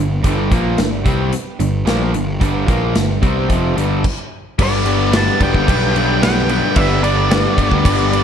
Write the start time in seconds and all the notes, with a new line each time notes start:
Already playing: G1 G3 B3
0.00 G2 D3
0.10 G3 B3 D4 G4
0.24 G1 G2 D3 G3 B3 D4 G4, kick, closed hi-hat
0.51 A#1 A#2 F3 G3 A#3 B3 D4, kick, closed hi-hat
0.55 G4
0.78 G1 G2 D3 G3 B3, snare, closed hi-hat
0.82 D4 G4
1.06 C2 C3 G3 B3 C4 D4 G4, kick, closed hi-hat
1.19 B3 D4 G4
1.23 G3
1.33 muted picked electric bass stroke, muted overdriven electric guitar stroke, closed hi-hat
1.47 G3 B3 D4 G4
1.60 G1 G2 D3 G3 B3 D4 G4, closed hi-hat
1.86 A#1 G2 A#2 D3 F3 G3 A#3 B3, snare, closed hi-hat
1.90 D4 G4
2.02 G3 B3 D4 G4
2.13 G1 G2 D3, closed hi-hat
2.28 G3 B3 D4 G4
2.40 G1 G2 D3 G3 B3 D4 G4, kick, closed hi-hat
2.67 A#1 A#2 F3 G3 A#3 B3 D4 G4, kick, closed hi-hat
2.95 G1 G2 D3 G3 B3, snare, closed hi-hat
2.99 D4 G4
3.22 C2 C3 G3 B3 C4 D4, kick, closed hi-hat
3.26 G4
3.38 G3 B3 D4 G4
3.49 F1 F2 C3 F3, kick, closed hi-hat
3.65 G3 B3 D4 G4
3.76 G1 G2 D3 G3 B3 D4, closed hi-hat
3.81 G4
4.04 kick, crash
4.59 G1 G2 D3 G3 B3 D4 G4 B4 D5, kick, crash
4.63 G4 D5
4.73 G3 B3 D4 G4
4.85 G3 B3 D4 B4, crash
5.12 G2 D3 G3 B3 D4 G4 B4, snare, crash
5.17 A5
5.40 E1 G2 D3 G3 B3 D4 B4 G5, kick, crash
5.44 G4
5.54 G1 G3 B3 D4 G4, kick
5.66 B1 G3 B3 D4 G4 B4 D5, kick, crash
5.71 B4
5.82 G3 B3 D4 G4
5.96 G3 B3 D4 G4 B4, crash
6.21 G2 D3 G3 B3 D4 G4 B4 D5 G5, snare, crash
6.25 D4 G4
6.49 G3 B3 D4 B4, crash
6.53 G4
6.62 G3 B3 D4 G4
6.76 G1 G2 D3 G3 B3 D4 G4 B4 D5 E5, kick, crash
6.88 G3 B3 D4 G4
7.04 G3 B3 D4 B4 D5, crash
7.28 G2 D3 G3 B3 D4 G4 B4 D5, snare, crash
7.56 G1 G2 D3 G3 B3 D4 G4 B4, kick, crash
7.70 D2 G3 B3 D4 G4, kick
7.84 G1 G3 B3 D4 G4 B4 D5, kick, crash
7.97 G3 B3 D4 G4
8.10 G3 B3 D4 B4 B5, crash
8.14 G4